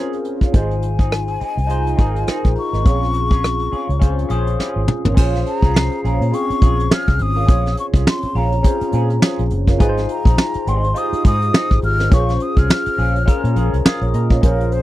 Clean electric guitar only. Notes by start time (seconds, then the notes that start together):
Already playing: C#4 F4 G#4
0.25 muted clean electric guitar stroke
0.42 C#4 F4 A#4
0.54 C4 D#4 G#4
0.83 muted clean electric guitar stroke
1.00 C4 D#4 G#4
1.28 muted clean electric guitar stroke
1.40 C4 D#4 G#4
1.58 muted clean electric guitar stroke
1.70 muted clean electric guitar stroke
1.87 muted clean electric guitar stroke
1.99 C4 D#4 G#4
2.16 muted clean electric guitar stroke
2.28 C4 D#4 G#4
2.56 muted clean electric guitar stroke
2.73 C4 D#4 A#4
2.85 C#4 F4 G#4
3.14 muted clean electric guitar stroke
3.31 C#4 F4 G#4
3.60 muted clean electric guitar stroke
3.72 C#4 F4 G#4
3.89 muted clean electric guitar stroke
4.01 muted clean electric guitar stroke
4.18 muted clean electric guitar stroke
4.30 C#4 F4 G#4
4.48 muted clean electric guitar stroke
4.59 C#4 F4 G#4
4.89 muted clean electric guitar stroke
5.05 C#4 F4 A#4
5.17 C#4 F4 G#4
5.47 muted clean electric guitar stroke
5.63 C#4 F4 G#4
5.92 muted clean electric guitar stroke
6.04 C#4 F4 G#4
6.21 muted clean electric guitar stroke
6.33 muted clean electric guitar stroke
6.50 muted clean electric guitar stroke
6.62 C#4 F4 G#4
6.79 muted clean electric guitar stroke
6.91 C#4 F4 G#4
7.20 muted clean electric guitar stroke
7.36 C#4 F4 A#4
7.48 C#4 F4 G#4
7.77 muted clean electric guitar stroke
7.94 C#4 F4 G#4
8.23 muted clean electric guitar stroke
8.35 C#4 F4 G#4
8.52 muted clean electric guitar stroke
8.64 muted clean electric guitar stroke
8.81 muted clean electric guitar stroke
8.93 C#4 F4 G#4
9.10 muted clean electric guitar stroke
9.22 C#4 F4 G#4
9.51 muted clean electric guitar stroke
9.68 C#4 F4 A#4
9.80 C4 D#4 G#4
10.09 muted clean electric guitar stroke
10.26 C4 D#4 G#4
10.55 muted clean electric guitar stroke
10.67 C4 D#4 G#4
10.84 muted clean electric guitar stroke
11.12 muted clean electric guitar stroke
11.24 C4 D#4 G#4
11.41 muted clean electric guitar stroke
11.53 C4 D#4 G#4
11.83 muted clean electric guitar stroke
12.00 C4 D#4 A#4
12.11 C#4 F4 G#4
12.40 muted clean electric guitar stroke
12.57 C#4 F4 G#4
12.86 muted clean electric guitar stroke
12.98 C#4 F4 G#4
13.15 muted clean electric guitar stroke
13.27 muted clean electric guitar stroke
13.44 muted clean electric guitar stroke
13.56 C#4 F4 G#4
13.73 muted clean electric guitar stroke
13.85 C#4 F4 G#4
14.14 muted clean electric guitar stroke
14.30 C#4 F4 A#4
14.43 A#3 C#4 G#4
14.72 muted clean electric guitar stroke